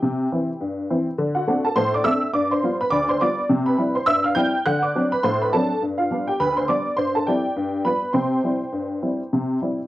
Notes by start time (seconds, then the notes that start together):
Already playing: G4 E5 G5
0.02 C3
0.32 E3 C4 E4
0.61 G2
0.90 E3 C4 E4
1.18 D3
1.35 F#4 F#5
1.48 A3 C4 D4
1.65 A4 A5
1.76 A2 C5 C6
1.94 D5 D6
2.04 A3 C4 D4 E5 E6
2.33 G2 D5 D6
2.51 C5 C6
2.63 G3 B3 F4
2.81 B4 B5
2.90 D2 D5 D6
3.09 C5 C6
3.21 G3 B3 F4 D5 D6
3.49 C3
3.66 B4 B5
3.78 G3 C4 E4
3.95 C5 C6
4.06 G2 E5 E6
4.24 F5 F6
4.35 G3 C4 E4 G5 G6
4.66 D3 F#5 F#6
4.82 D5 D6
4.95 F#3 C4 D4
5.12 B4 B5
5.23 A2 C5 C6
5.42 B4 B5
5.53 F#3 C4 D4 A4 A5
5.82 G2
5.98 F4 F5
6.11 G3 B3 D4
6.27 G4 G5
6.40 D2 B4 B5
6.57 C5 C6
6.68 G3 B3 D4 D5 D6
6.97 G2 C5 C6
7.15 A4 A5
7.27 G3 C4 E4 G4 D5 G5
7.56 G2
7.85 G3 B3 F4 B4 B5
8.13 C3 C5 G5 C6
8.44 G3 C4 E4
8.72 G2
9.03 G3 C4 E4
9.33 C3
9.62 G3 C4 E4